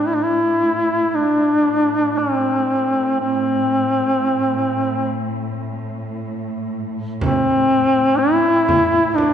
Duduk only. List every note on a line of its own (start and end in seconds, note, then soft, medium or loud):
0.07 0.16 E4 medium
0.15 0.24 D4 medium
0.22 1.16 E4 medium
1.15 2.19 D4 medium
2.18 3.19 C4 medium
3.20 5.19 C4 medium
7.22 8.20 C4 medium
8.18 9.17 E4 loud
9.15 9.34 D4 medium